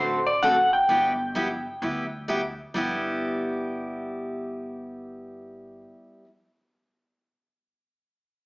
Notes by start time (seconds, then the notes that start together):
Already playing: A1 D3 A3 C4 F#4 A4 C5
0.27 D5
0.42 D3 A3 C4 F#4 A4 F#5
0.73 G5
0.89 G1 G3 B3 E4 G4
1.35 G3 B3 E4 G4
1.82 D2 G3 B3 E4 G4
2.28 G3 B3 E4 G4
2.74 G1 G3 B3 E4 G4